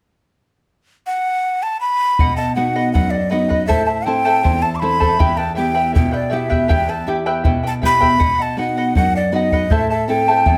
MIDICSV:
0, 0, Header, 1, 5, 480
1, 0, Start_track
1, 0, Key_signature, 1, "minor"
1, 0, Tempo, 751127
1, 443, Time_signature, 2, 2, 24, 8
1, 6760, End_track
2, 0, Start_track
2, 0, Title_t, "Quena"
2, 0, Program_c, 0, 77
2, 681, Note_on_c, 0, 78, 92
2, 1040, Note_on_c, 0, 81, 88
2, 1050, Note_off_c, 0, 78, 0
2, 1150, Note_off_c, 0, 81, 0
2, 1154, Note_on_c, 0, 83, 94
2, 1493, Note_off_c, 0, 83, 0
2, 1511, Note_on_c, 0, 81, 86
2, 1628, Note_off_c, 0, 81, 0
2, 1633, Note_on_c, 0, 78, 78
2, 1861, Note_off_c, 0, 78, 0
2, 1873, Note_on_c, 0, 78, 77
2, 1984, Note_on_c, 0, 74, 73
2, 1993, Note_off_c, 0, 78, 0
2, 2109, Note_on_c, 0, 75, 74
2, 2118, Note_off_c, 0, 74, 0
2, 2338, Note_off_c, 0, 75, 0
2, 2342, Note_on_c, 0, 76, 91
2, 2461, Note_off_c, 0, 76, 0
2, 2465, Note_on_c, 0, 76, 75
2, 2588, Note_on_c, 0, 79, 90
2, 2598, Note_off_c, 0, 76, 0
2, 2953, Note_on_c, 0, 81, 79
2, 2963, Note_off_c, 0, 79, 0
2, 3039, Note_on_c, 0, 86, 60
2, 3048, Note_off_c, 0, 81, 0
2, 3069, Note_on_c, 0, 83, 87
2, 3078, Note_off_c, 0, 86, 0
2, 3433, Note_on_c, 0, 81, 76
2, 3442, Note_off_c, 0, 83, 0
2, 3549, Note_off_c, 0, 81, 0
2, 3553, Note_on_c, 0, 79, 82
2, 3781, Note_off_c, 0, 79, 0
2, 3804, Note_on_c, 0, 79, 74
2, 3924, Note_on_c, 0, 74, 67
2, 3933, Note_off_c, 0, 79, 0
2, 4045, Note_on_c, 0, 78, 67
2, 4055, Note_off_c, 0, 74, 0
2, 4070, Note_on_c, 0, 76, 73
2, 4076, Note_off_c, 0, 78, 0
2, 4287, Note_on_c, 0, 79, 86
2, 4296, Note_off_c, 0, 76, 0
2, 4406, Note_on_c, 0, 81, 72
2, 4416, Note_off_c, 0, 79, 0
2, 4525, Note_off_c, 0, 81, 0
2, 4902, Note_on_c, 0, 81, 85
2, 4940, Note_off_c, 0, 81, 0
2, 5020, Note_on_c, 0, 83, 95
2, 5380, Note_on_c, 0, 81, 79
2, 5390, Note_off_c, 0, 83, 0
2, 5492, Note_off_c, 0, 81, 0
2, 5498, Note_on_c, 0, 78, 79
2, 5714, Note_off_c, 0, 78, 0
2, 5730, Note_on_c, 0, 78, 76
2, 5839, Note_off_c, 0, 78, 0
2, 5854, Note_on_c, 0, 74, 75
2, 5967, Note_on_c, 0, 75, 75
2, 5976, Note_off_c, 0, 74, 0
2, 6214, Note_on_c, 0, 76, 85
2, 6224, Note_off_c, 0, 75, 0
2, 6325, Note_off_c, 0, 76, 0
2, 6329, Note_on_c, 0, 76, 75
2, 6438, Note_off_c, 0, 76, 0
2, 6446, Note_on_c, 0, 79, 94
2, 6760, Note_off_c, 0, 79, 0
2, 6760, End_track
3, 0, Start_track
3, 0, Title_t, "Charango"
3, 0, Program_c, 1, 24
3, 1401, Note_on_c, 1, 71, 70
3, 1404, Note_on_c, 1, 75, 75
3, 1409, Note_on_c, 1, 78, 82
3, 1504, Note_off_c, 1, 78, 0
3, 1511, Note_on_c, 1, 78, 44
3, 1514, Note_off_c, 1, 75, 0
3, 1522, Note_off_c, 1, 71, 0
3, 1522, Note_on_c, 1, 75, 40
3, 1632, Note_off_c, 1, 75, 0
3, 1635, Note_off_c, 1, 78, 0
3, 1636, Note_on_c, 1, 71, 55
3, 1640, Note_on_c, 1, 75, 54
3, 1643, Note_on_c, 1, 78, 56
3, 1753, Note_off_c, 1, 75, 0
3, 1753, Note_off_c, 1, 78, 0
3, 1755, Note_off_c, 1, 71, 0
3, 1761, Note_on_c, 1, 75, 62
3, 1761, Note_on_c, 1, 78, 65
3, 1763, Note_on_c, 1, 71, 53
3, 1872, Note_off_c, 1, 71, 0
3, 1874, Note_off_c, 1, 75, 0
3, 1879, Note_off_c, 1, 78, 0
3, 1880, Note_on_c, 1, 71, 55
3, 1882, Note_on_c, 1, 75, 53
3, 1887, Note_on_c, 1, 78, 64
3, 1991, Note_off_c, 1, 78, 0
3, 1998, Note_on_c, 1, 78, 48
3, 2000, Note_off_c, 1, 75, 0
3, 2002, Note_off_c, 1, 71, 0
3, 2008, Note_on_c, 1, 75, 35
3, 2107, Note_off_c, 1, 75, 0
3, 2112, Note_off_c, 1, 78, 0
3, 2113, Note_on_c, 1, 71, 61
3, 2114, Note_on_c, 1, 75, 60
3, 2119, Note_on_c, 1, 78, 55
3, 2224, Note_off_c, 1, 78, 0
3, 2228, Note_off_c, 1, 75, 0
3, 2230, Note_off_c, 1, 71, 0
3, 2231, Note_on_c, 1, 78, 64
3, 2236, Note_on_c, 1, 75, 59
3, 2237, Note_on_c, 1, 71, 55
3, 2348, Note_off_c, 1, 75, 0
3, 2350, Note_off_c, 1, 78, 0
3, 2350, Note_on_c, 1, 69, 73
3, 2353, Note_off_c, 1, 71, 0
3, 2353, Note_on_c, 1, 76, 70
3, 2355, Note_on_c, 1, 72, 80
3, 2356, Note_on_c, 1, 64, 71
3, 2358, Note_on_c, 1, 81, 78
3, 2462, Note_off_c, 1, 81, 0
3, 2469, Note_off_c, 1, 72, 0
3, 2470, Note_on_c, 1, 81, 52
3, 2473, Note_off_c, 1, 64, 0
3, 2474, Note_off_c, 1, 76, 0
3, 2477, Note_off_c, 1, 69, 0
3, 2477, Note_on_c, 1, 72, 45
3, 2480, Note_on_c, 1, 64, 39
3, 2587, Note_off_c, 1, 64, 0
3, 2588, Note_off_c, 1, 72, 0
3, 2591, Note_off_c, 1, 81, 0
3, 2592, Note_on_c, 1, 76, 56
3, 2595, Note_on_c, 1, 64, 54
3, 2596, Note_on_c, 1, 72, 57
3, 2598, Note_on_c, 1, 81, 65
3, 2707, Note_off_c, 1, 81, 0
3, 2709, Note_off_c, 1, 72, 0
3, 2712, Note_off_c, 1, 64, 0
3, 2714, Note_off_c, 1, 76, 0
3, 2715, Note_on_c, 1, 81, 69
3, 2717, Note_on_c, 1, 72, 64
3, 2720, Note_on_c, 1, 64, 58
3, 2721, Note_on_c, 1, 76, 60
3, 2722, Note_on_c, 1, 69, 60
3, 2823, Note_off_c, 1, 76, 0
3, 2828, Note_off_c, 1, 64, 0
3, 2828, Note_off_c, 1, 69, 0
3, 2830, Note_off_c, 1, 72, 0
3, 2831, Note_on_c, 1, 76, 58
3, 2833, Note_off_c, 1, 81, 0
3, 2835, Note_on_c, 1, 64, 56
3, 2838, Note_on_c, 1, 72, 59
3, 2840, Note_on_c, 1, 81, 61
3, 2947, Note_off_c, 1, 81, 0
3, 2948, Note_off_c, 1, 72, 0
3, 2953, Note_off_c, 1, 64, 0
3, 2955, Note_on_c, 1, 72, 40
3, 2955, Note_on_c, 1, 81, 53
3, 2957, Note_off_c, 1, 76, 0
3, 2961, Note_on_c, 1, 64, 35
3, 3069, Note_off_c, 1, 64, 0
3, 3072, Note_off_c, 1, 72, 0
3, 3073, Note_off_c, 1, 81, 0
3, 3074, Note_on_c, 1, 76, 60
3, 3077, Note_on_c, 1, 64, 61
3, 3079, Note_on_c, 1, 72, 55
3, 3080, Note_on_c, 1, 81, 61
3, 3186, Note_off_c, 1, 72, 0
3, 3190, Note_off_c, 1, 64, 0
3, 3190, Note_off_c, 1, 81, 0
3, 3192, Note_off_c, 1, 76, 0
3, 3194, Note_on_c, 1, 72, 64
3, 3197, Note_on_c, 1, 64, 56
3, 3197, Note_on_c, 1, 81, 67
3, 3200, Note_on_c, 1, 76, 60
3, 3201, Note_on_c, 1, 69, 55
3, 3310, Note_off_c, 1, 76, 0
3, 3314, Note_off_c, 1, 64, 0
3, 3316, Note_off_c, 1, 72, 0
3, 3318, Note_on_c, 1, 76, 72
3, 3319, Note_on_c, 1, 67, 69
3, 3320, Note_off_c, 1, 69, 0
3, 3320, Note_off_c, 1, 81, 0
3, 3321, Note_on_c, 1, 64, 74
3, 3323, Note_on_c, 1, 71, 86
3, 3323, Note_on_c, 1, 79, 87
3, 3425, Note_off_c, 1, 79, 0
3, 3430, Note_off_c, 1, 71, 0
3, 3432, Note_off_c, 1, 64, 0
3, 3432, Note_on_c, 1, 79, 53
3, 3438, Note_on_c, 1, 71, 45
3, 3440, Note_on_c, 1, 64, 41
3, 3441, Note_off_c, 1, 67, 0
3, 3441, Note_off_c, 1, 76, 0
3, 3544, Note_off_c, 1, 64, 0
3, 3545, Note_off_c, 1, 71, 0
3, 3548, Note_on_c, 1, 76, 53
3, 3552, Note_off_c, 1, 79, 0
3, 3552, Note_on_c, 1, 64, 50
3, 3552, Note_on_c, 1, 71, 63
3, 3559, Note_on_c, 1, 79, 67
3, 3663, Note_off_c, 1, 79, 0
3, 3665, Note_off_c, 1, 64, 0
3, 3665, Note_off_c, 1, 71, 0
3, 3669, Note_off_c, 1, 76, 0
3, 3671, Note_on_c, 1, 79, 61
3, 3673, Note_on_c, 1, 64, 52
3, 3673, Note_on_c, 1, 71, 64
3, 3677, Note_on_c, 1, 76, 54
3, 3680, Note_on_c, 1, 67, 52
3, 3781, Note_off_c, 1, 76, 0
3, 3785, Note_off_c, 1, 64, 0
3, 3789, Note_on_c, 1, 76, 57
3, 3791, Note_off_c, 1, 71, 0
3, 3791, Note_off_c, 1, 79, 0
3, 3793, Note_on_c, 1, 64, 56
3, 3798, Note_on_c, 1, 71, 57
3, 3798, Note_on_c, 1, 79, 56
3, 3802, Note_off_c, 1, 67, 0
3, 3899, Note_off_c, 1, 79, 0
3, 3904, Note_off_c, 1, 71, 0
3, 3907, Note_on_c, 1, 79, 47
3, 3911, Note_off_c, 1, 64, 0
3, 3912, Note_on_c, 1, 71, 43
3, 3916, Note_off_c, 1, 76, 0
3, 3918, Note_on_c, 1, 64, 37
3, 4020, Note_off_c, 1, 64, 0
3, 4022, Note_off_c, 1, 71, 0
3, 4024, Note_on_c, 1, 76, 55
3, 4027, Note_off_c, 1, 79, 0
3, 4028, Note_on_c, 1, 64, 54
3, 4030, Note_on_c, 1, 71, 58
3, 4035, Note_on_c, 1, 79, 62
3, 4143, Note_off_c, 1, 71, 0
3, 4145, Note_off_c, 1, 79, 0
3, 4147, Note_off_c, 1, 64, 0
3, 4148, Note_off_c, 1, 76, 0
3, 4151, Note_on_c, 1, 71, 64
3, 4153, Note_on_c, 1, 79, 61
3, 4154, Note_on_c, 1, 64, 63
3, 4156, Note_on_c, 1, 76, 56
3, 4159, Note_on_c, 1, 67, 57
3, 4263, Note_off_c, 1, 67, 0
3, 4268, Note_off_c, 1, 71, 0
3, 4268, Note_off_c, 1, 76, 0
3, 4269, Note_off_c, 1, 79, 0
3, 4270, Note_off_c, 1, 64, 0
3, 4270, Note_on_c, 1, 67, 71
3, 4276, Note_on_c, 1, 71, 80
3, 4276, Note_on_c, 1, 76, 75
3, 4276, Note_on_c, 1, 79, 78
3, 4277, Note_on_c, 1, 64, 76
3, 4388, Note_off_c, 1, 79, 0
3, 4394, Note_off_c, 1, 71, 0
3, 4396, Note_on_c, 1, 79, 50
3, 4397, Note_off_c, 1, 64, 0
3, 4397, Note_off_c, 1, 67, 0
3, 4400, Note_off_c, 1, 76, 0
3, 4402, Note_on_c, 1, 71, 46
3, 4405, Note_on_c, 1, 64, 41
3, 4516, Note_off_c, 1, 64, 0
3, 4519, Note_off_c, 1, 71, 0
3, 4519, Note_off_c, 1, 79, 0
3, 4520, Note_on_c, 1, 76, 52
3, 4524, Note_on_c, 1, 64, 49
3, 4527, Note_on_c, 1, 71, 52
3, 4529, Note_on_c, 1, 79, 68
3, 4632, Note_off_c, 1, 79, 0
3, 4633, Note_off_c, 1, 64, 0
3, 4633, Note_off_c, 1, 71, 0
3, 4634, Note_off_c, 1, 76, 0
3, 4639, Note_on_c, 1, 79, 70
3, 4641, Note_on_c, 1, 64, 65
3, 4641, Note_on_c, 1, 71, 69
3, 4642, Note_on_c, 1, 76, 58
3, 4643, Note_on_c, 1, 67, 60
3, 4746, Note_off_c, 1, 76, 0
3, 4749, Note_off_c, 1, 64, 0
3, 4753, Note_off_c, 1, 71, 0
3, 4754, Note_on_c, 1, 76, 48
3, 4757, Note_off_c, 1, 79, 0
3, 4757, Note_on_c, 1, 64, 54
3, 4761, Note_on_c, 1, 71, 61
3, 4763, Note_off_c, 1, 67, 0
3, 4765, Note_on_c, 1, 79, 61
3, 4870, Note_off_c, 1, 79, 0
3, 4874, Note_off_c, 1, 71, 0
3, 4878, Note_off_c, 1, 64, 0
3, 4878, Note_off_c, 1, 76, 0
3, 4878, Note_on_c, 1, 79, 52
3, 4881, Note_on_c, 1, 71, 42
3, 4886, Note_on_c, 1, 64, 40
3, 4991, Note_off_c, 1, 64, 0
3, 4994, Note_off_c, 1, 71, 0
3, 4995, Note_on_c, 1, 76, 54
3, 4996, Note_off_c, 1, 79, 0
3, 4999, Note_on_c, 1, 64, 60
3, 5002, Note_on_c, 1, 71, 60
3, 5004, Note_on_c, 1, 79, 63
3, 5107, Note_off_c, 1, 79, 0
3, 5110, Note_off_c, 1, 64, 0
3, 5110, Note_off_c, 1, 71, 0
3, 5113, Note_off_c, 1, 76, 0
3, 5115, Note_on_c, 1, 79, 66
3, 5118, Note_on_c, 1, 64, 58
3, 5118, Note_on_c, 1, 71, 63
3, 5121, Note_on_c, 1, 76, 59
3, 5124, Note_on_c, 1, 67, 51
3, 5228, Note_off_c, 1, 71, 0
3, 5233, Note_off_c, 1, 64, 0
3, 5235, Note_off_c, 1, 76, 0
3, 5235, Note_on_c, 1, 71, 66
3, 5237, Note_on_c, 1, 75, 73
3, 5238, Note_on_c, 1, 78, 72
3, 5239, Note_off_c, 1, 79, 0
3, 5243, Note_off_c, 1, 67, 0
3, 5351, Note_off_c, 1, 78, 0
3, 5358, Note_on_c, 1, 78, 52
3, 5359, Note_off_c, 1, 71, 0
3, 5360, Note_off_c, 1, 75, 0
3, 5370, Note_on_c, 1, 75, 42
3, 5473, Note_off_c, 1, 75, 0
3, 5475, Note_on_c, 1, 71, 55
3, 5481, Note_off_c, 1, 78, 0
3, 5481, Note_on_c, 1, 75, 59
3, 5488, Note_on_c, 1, 78, 56
3, 5597, Note_off_c, 1, 78, 0
3, 5599, Note_off_c, 1, 71, 0
3, 5602, Note_off_c, 1, 75, 0
3, 5605, Note_on_c, 1, 78, 65
3, 5609, Note_on_c, 1, 75, 58
3, 5611, Note_on_c, 1, 71, 48
3, 5716, Note_off_c, 1, 71, 0
3, 5720, Note_off_c, 1, 75, 0
3, 5724, Note_off_c, 1, 78, 0
3, 5724, Note_on_c, 1, 71, 46
3, 5727, Note_on_c, 1, 75, 56
3, 5731, Note_on_c, 1, 78, 58
3, 5843, Note_off_c, 1, 78, 0
3, 5844, Note_off_c, 1, 71, 0
3, 5845, Note_off_c, 1, 75, 0
3, 5851, Note_on_c, 1, 78, 49
3, 5861, Note_on_c, 1, 75, 37
3, 5966, Note_off_c, 1, 75, 0
3, 5967, Note_off_c, 1, 78, 0
3, 5968, Note_on_c, 1, 71, 57
3, 5974, Note_on_c, 1, 75, 55
3, 5980, Note_on_c, 1, 78, 66
3, 6078, Note_off_c, 1, 78, 0
3, 6084, Note_off_c, 1, 71, 0
3, 6084, Note_off_c, 1, 75, 0
3, 6086, Note_on_c, 1, 78, 67
3, 6092, Note_on_c, 1, 71, 56
3, 6092, Note_on_c, 1, 75, 62
3, 6203, Note_off_c, 1, 71, 0
3, 6203, Note_on_c, 1, 72, 69
3, 6204, Note_off_c, 1, 78, 0
3, 6206, Note_off_c, 1, 75, 0
3, 6206, Note_on_c, 1, 64, 84
3, 6207, Note_on_c, 1, 76, 69
3, 6208, Note_on_c, 1, 69, 73
3, 6212, Note_on_c, 1, 81, 82
3, 6320, Note_off_c, 1, 81, 0
3, 6323, Note_off_c, 1, 72, 0
3, 6324, Note_off_c, 1, 64, 0
3, 6325, Note_off_c, 1, 76, 0
3, 6326, Note_off_c, 1, 69, 0
3, 6328, Note_on_c, 1, 81, 45
3, 6335, Note_on_c, 1, 69, 45
3, 6339, Note_on_c, 1, 64, 37
3, 6445, Note_off_c, 1, 64, 0
3, 6446, Note_off_c, 1, 69, 0
3, 6446, Note_off_c, 1, 81, 0
3, 6447, Note_on_c, 1, 76, 55
3, 6453, Note_on_c, 1, 64, 55
3, 6454, Note_on_c, 1, 69, 62
3, 6455, Note_on_c, 1, 81, 57
3, 6561, Note_off_c, 1, 81, 0
3, 6564, Note_off_c, 1, 64, 0
3, 6564, Note_off_c, 1, 69, 0
3, 6565, Note_off_c, 1, 76, 0
3, 6569, Note_on_c, 1, 81, 69
3, 6571, Note_on_c, 1, 64, 59
3, 6572, Note_on_c, 1, 69, 58
3, 6574, Note_on_c, 1, 76, 57
3, 6578, Note_on_c, 1, 72, 53
3, 6678, Note_off_c, 1, 76, 0
3, 6682, Note_off_c, 1, 64, 0
3, 6686, Note_off_c, 1, 69, 0
3, 6686, Note_off_c, 1, 81, 0
3, 6686, Note_on_c, 1, 76, 55
3, 6690, Note_on_c, 1, 64, 61
3, 6691, Note_off_c, 1, 72, 0
3, 6693, Note_on_c, 1, 69, 63
3, 6695, Note_on_c, 1, 81, 64
3, 6760, Note_off_c, 1, 64, 0
3, 6760, Note_off_c, 1, 69, 0
3, 6760, Note_off_c, 1, 76, 0
3, 6760, Note_off_c, 1, 81, 0
3, 6760, End_track
4, 0, Start_track
4, 0, Title_t, "Nylon-string guitar"
4, 0, Program_c, 2, 24
4, 1409, Note_on_c, 2, 47, 55
4, 1640, Note_on_c, 2, 59, 44
4, 1643, Note_on_c, 2, 63, 44
4, 1646, Note_on_c, 2, 66, 54
4, 1872, Note_off_c, 2, 47, 0
4, 1885, Note_on_c, 2, 42, 64
4, 2026, Note_off_c, 2, 59, 0
4, 2027, Note_off_c, 2, 63, 0
4, 2028, Note_off_c, 2, 66, 0
4, 2121, Note_on_c, 2, 59, 44
4, 2124, Note_on_c, 2, 63, 38
4, 2127, Note_on_c, 2, 66, 53
4, 2314, Note_off_c, 2, 59, 0
4, 2315, Note_off_c, 2, 63, 0
4, 2318, Note_off_c, 2, 66, 0
4, 2350, Note_off_c, 2, 42, 0
4, 2363, Note_on_c, 2, 45, 52
4, 2598, Note_on_c, 2, 60, 48
4, 2602, Note_on_c, 2, 64, 44
4, 2606, Note_on_c, 2, 69, 54
4, 2829, Note_off_c, 2, 45, 0
4, 2841, Note_on_c, 2, 40, 58
4, 2984, Note_off_c, 2, 60, 0
4, 2986, Note_off_c, 2, 64, 0
4, 2989, Note_off_c, 2, 69, 0
4, 3082, Note_on_c, 2, 64, 46
4, 3083, Note_on_c, 2, 60, 43
4, 3086, Note_on_c, 2, 69, 49
4, 3275, Note_off_c, 2, 60, 0
4, 3275, Note_off_c, 2, 64, 0
4, 3277, Note_off_c, 2, 69, 0
4, 3308, Note_off_c, 2, 40, 0
4, 3325, Note_on_c, 2, 40, 55
4, 3564, Note_on_c, 2, 59, 45
4, 3565, Note_on_c, 2, 64, 44
4, 3568, Note_on_c, 2, 67, 48
4, 3790, Note_off_c, 2, 40, 0
4, 3810, Note_on_c, 2, 47, 59
4, 3948, Note_off_c, 2, 59, 0
4, 3948, Note_off_c, 2, 64, 0
4, 3950, Note_off_c, 2, 67, 0
4, 4040, Note_on_c, 2, 59, 46
4, 4044, Note_on_c, 2, 67, 51
4, 4045, Note_on_c, 2, 64, 44
4, 4272, Note_off_c, 2, 47, 0
4, 4287, Note_on_c, 2, 40, 53
4, 4426, Note_off_c, 2, 59, 0
4, 4427, Note_off_c, 2, 64, 0
4, 4428, Note_off_c, 2, 67, 0
4, 4515, Note_on_c, 2, 59, 46
4, 4522, Note_on_c, 2, 64, 41
4, 4524, Note_on_c, 2, 67, 52
4, 4751, Note_off_c, 2, 40, 0
4, 4760, Note_on_c, 2, 47, 61
4, 4903, Note_off_c, 2, 59, 0
4, 4907, Note_off_c, 2, 64, 0
4, 4907, Note_off_c, 2, 67, 0
4, 5004, Note_on_c, 2, 59, 45
4, 5007, Note_on_c, 2, 64, 40
4, 5010, Note_on_c, 2, 67, 47
4, 5196, Note_off_c, 2, 59, 0
4, 5197, Note_off_c, 2, 64, 0
4, 5200, Note_off_c, 2, 67, 0
4, 5227, Note_off_c, 2, 47, 0
4, 5242, Note_on_c, 2, 47, 51
4, 5476, Note_on_c, 2, 59, 41
4, 5480, Note_on_c, 2, 63, 39
4, 5485, Note_on_c, 2, 66, 49
4, 5708, Note_off_c, 2, 47, 0
4, 5721, Note_on_c, 2, 42, 59
4, 5863, Note_off_c, 2, 59, 0
4, 5866, Note_off_c, 2, 63, 0
4, 5867, Note_off_c, 2, 66, 0
4, 5955, Note_on_c, 2, 59, 41
4, 5958, Note_on_c, 2, 63, 44
4, 5959, Note_on_c, 2, 66, 51
4, 6150, Note_off_c, 2, 59, 0
4, 6152, Note_off_c, 2, 63, 0
4, 6152, Note_off_c, 2, 66, 0
4, 6188, Note_off_c, 2, 42, 0
4, 6199, Note_on_c, 2, 45, 54
4, 6440, Note_on_c, 2, 60, 46
4, 6442, Note_on_c, 2, 64, 43
4, 6448, Note_on_c, 2, 69, 52
4, 6667, Note_off_c, 2, 45, 0
4, 6682, Note_on_c, 2, 40, 62
4, 6760, Note_off_c, 2, 40, 0
4, 6760, Note_off_c, 2, 60, 0
4, 6760, Note_off_c, 2, 64, 0
4, 6760, Note_off_c, 2, 69, 0
4, 6760, End_track
5, 0, Start_track
5, 0, Title_t, "Bombo"
5, 1400, Note_on_c, 9, 43, 66
5, 1464, Note_off_c, 9, 43, 0
5, 1886, Note_on_c, 9, 43, 58
5, 1950, Note_off_c, 9, 43, 0
5, 2243, Note_on_c, 9, 43, 41
5, 2306, Note_off_c, 9, 43, 0
5, 2364, Note_on_c, 9, 43, 53
5, 2428, Note_off_c, 9, 43, 0
5, 2844, Note_on_c, 9, 43, 61
5, 2908, Note_off_c, 9, 43, 0
5, 3203, Note_on_c, 9, 43, 50
5, 3267, Note_off_c, 9, 43, 0
5, 3325, Note_on_c, 9, 43, 80
5, 3389, Note_off_c, 9, 43, 0
5, 3808, Note_on_c, 9, 43, 77
5, 3872, Note_off_c, 9, 43, 0
5, 4164, Note_on_c, 9, 43, 52
5, 4228, Note_off_c, 9, 43, 0
5, 4283, Note_on_c, 9, 43, 67
5, 4347, Note_off_c, 9, 43, 0
5, 4759, Note_on_c, 9, 43, 67
5, 4823, Note_off_c, 9, 43, 0
5, 5000, Note_on_c, 9, 43, 41
5, 5064, Note_off_c, 9, 43, 0
5, 5126, Note_on_c, 9, 43, 44
5, 5190, Note_off_c, 9, 43, 0
5, 5244, Note_on_c, 9, 43, 65
5, 5308, Note_off_c, 9, 43, 0
5, 5724, Note_on_c, 9, 43, 60
5, 5787, Note_off_c, 9, 43, 0
5, 6083, Note_on_c, 9, 43, 46
5, 6147, Note_off_c, 9, 43, 0
5, 6203, Note_on_c, 9, 43, 63
5, 6267, Note_off_c, 9, 43, 0
5, 6685, Note_on_c, 9, 43, 66
5, 6749, Note_off_c, 9, 43, 0
5, 6760, End_track
0, 0, End_of_file